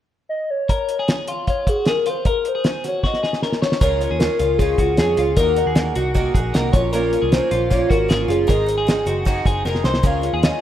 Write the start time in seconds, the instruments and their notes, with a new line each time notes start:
0.29 soft synth lead D#5
0.50 soft synth lead C#5
0.69 clean electric guitar A#4, kick, closed hi-hat
0.89 closed hi-hat
0.99 clean electric guitar G#4
1.08 snare, closed hi-hat
1.28 clean electric guitar F4, closed hi-hat
1.47 clean electric guitar F4, soft synth lead C#5, kick, closed hi-hat
1.67 clean electric guitar F#4, soft synth lead G#4, kick, closed hi-hat
1.86 clean electric guitar G#4, soft synth lead A#4, snare, closed hi-hat
2.06 clean electric guitar F4, soft synth lead C5, closed hi-hat
2.25 clean electric guitar A#4, soft synth lead A#4, kick, closed hi-hat
2.45 soft synth lead C5, closed hi-hat
2.55 clean electric guitar G#4
2.64 snare, closed hi-hat
2.84 clean electric guitar F#4, soft synth lead C#5, snare, closed hi-hat
3.03 clean electric guitar F#4, soft synth lead D#5, kick, snare
3.14 snare
3.23 clean electric guitar G#4, snare
3.33 snare
3.42 clean electric guitar A#4, snare
3.52 snare
3.62 clean electric guitar C#5, snare
3.72 snare
3.81 picked electric bass C#2, twelve-string acoustic guitar C#3 G#3 C#4 F4, clean electric guitar A#4, soft synth lead C#5, kick, closed hi-hat
4.01 twelve-string acoustic guitar G#3 C#4 F4, closed hi-hat
4.11 picked electric bass D#2, clean electric guitar G#4
4.19 twelve-string acoustic guitar C#3 G#3 C#4 F4, soft synth lead A#4, snare, closed hi-hat
4.39 picked electric bass C#2, twelve-string acoustic guitar G#3 C#4 F4, clean electric guitar F4, closed hi-hat
4.58 twelve-string acoustic guitar C#3 G#3 C#4, clean electric guitar F4, soft synth lead G#4, kick, closed hi-hat
4.62 twelve-string acoustic guitar F4
4.78 picked electric bass C#2, twelve-string acoustic guitar G#3 C#4 F4, clean electric guitar F#4, kick, closed hi-hat
4.97 picked electric bass F2, twelve-string acoustic guitar C#3 G#3 C#4, soft synth lead G#4, clean electric guitar G#4, snare, closed hi-hat
5.01 twelve-string acoustic guitar F4
5.17 picked electric bass C#2, twelve-string acoustic guitar G#3 C#4 F4, clean electric guitar F4, closed hi-hat
5.36 picked electric bass D#2, twelve-string acoustic guitar D#3 A#3 D#4 F#4, soft synth lead A#4, clean electric guitar A#4, kick, closed hi-hat
5.56 twelve-string acoustic guitar A#3 D#4 F#4, closed hi-hat
5.66 picked electric bass D#2, clean electric guitar G#4
5.75 twelve-string acoustic guitar D#3 A#3 D#4 F#4, snare, closed hi-hat
5.95 picked electric bass C2, twelve-string acoustic guitar A#3 D#4 F#4, clean electric guitar F#4, closed hi-hat
6.14 twelve-string acoustic guitar D#3 A#3 D#4 F#4, clean electric guitar F#4, kick, closed hi-hat
6.34 picked electric bass A#1, twelve-string acoustic guitar D#4 F#4, clean electric guitar G#4, kick, closed hi-hat
6.39 twelve-string acoustic guitar A#3
6.54 picked electric bass C2, twelve-string acoustic guitar D#3 A#3 D#4 F#4, clean electric guitar A#4, snare, closed hi-hat
6.73 picked electric bass A#1, twelve-string acoustic guitar C#4 F4, clean electric guitar C#5, kick, closed hi-hat
6.78 twelve-string acoustic guitar A#3
6.93 twelve-string acoustic guitar A#2 F3 A#3 C#4 F4, clean electric guitar A#4, soft synth lead A#4, closed hi-hat
7.13 twelve-string acoustic guitar A#3 C#4 F4, closed hi-hat
7.22 picked electric bass C2, clean electric guitar G#4
7.32 twelve-string acoustic guitar F3 A#3 C#4 F4, soft synth lead C5, snare, closed hi-hat
7.51 picked electric bass A#1, twelve-string acoustic guitar A#3 C#4 F4, clean electric guitar F4, snare, closed hi-hat
7.70 twelve-string acoustic guitar A#2 F3 A#3 C#4 F4, clean electric guitar F4, soft synth lead C#5, kick, closed hi-hat
7.90 picked electric bass G#1, twelve-string acoustic guitar A#3 C#4 F4, clean electric guitar F#4, soft synth lead A#4, kick, closed hi-hat
8.08 picked electric bass G#1, twelve-string acoustic guitar F3 A#3 C#4 F4, clean electric guitar G#4, snare, closed hi-hat
8.28 picked electric bass F#1, twelve-string acoustic guitar A#3 C#4 F4, clean electric guitar F4, soft synth lead G#4, closed hi-hat
8.47 picked electric bass G#1, twelve-string acoustic guitar G#2 D#3 G#3 C4 D#4, clean electric guitar A#4, kick, closed hi-hat
8.66 twelve-string acoustic guitar G#3 C4 D#4, closed hi-hat
8.78 clean electric guitar G#4
8.87 twelve-string acoustic guitar D#3 G#3 C4 D#4, snare, closed hi-hat
9.06 picked electric bass F#1, twelve-string acoustic guitar G#3 C4 D#4, clean electric guitar F#4, closed hi-hat
9.25 twelve-string acoustic guitar G#2 D#3 G#3 C4 D#4, clean electric guitar F#4, kick, closed hi-hat
9.45 picked electric bass F#1, twelve-string acoustic guitar G#3 C4 D#4, clean electric guitar G#4, kick, closed hi-hat
9.65 picked electric bass F1, twelve-string acoustic guitar D#3 G#3 C4 D#4, clean electric guitar A#4, snare
9.75 snare
9.84 picked electric bass C2, twelve-string acoustic guitar G#3 C4 D#4, clean electric guitar C5, snare
9.94 snare
10.03 picked electric bass C#2, twelve-string acoustic guitar C#3 G#3 C#4 F4, clean electric guitar A#4, soft synth lead F5, kick, closed hi-hat
10.22 twelve-string acoustic guitar G#3 C#4 F4, closed hi-hat
10.33 picked electric bass D#2, clean electric guitar G#4
10.43 twelve-string acoustic guitar C#3 G#3 C#4 F4, soft synth lead D#5, snare, closed hi-hat